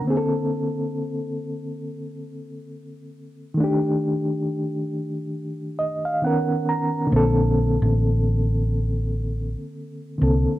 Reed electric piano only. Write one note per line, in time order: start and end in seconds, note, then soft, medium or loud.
0.01 3.52 D3 medium
0.01 3.54 A#3 medium
0.08 3.55 C4 medium
0.08 0.15 G#4 medium
0.17 3.60 A4 medium
3.54 6.17 D#3 medium
3.54 6.18 A3 medium
3.60 6.20 D4 medium
3.60 6.22 G4 medium
5.79 6.03 D#5 medium
6.05 6.22 F5 medium
6.22 7.11 D#3 medium
6.22 7.12 B3 medium
6.22 7.12 C#4 medium
6.22 6.65 F#5 medium
6.27 7.13 A#4 medium
6.69 7.09 A#5 medium
7.07 10.14 D3 medium
7.07 10.15 A#3 medium
7.13 10.17 C4 medium
7.13 10.18 A4 medium
10.18 10.59 D3 medium
10.18 10.59 A#3 soft
10.18 10.59 C4 soft
10.23 10.59 A4 medium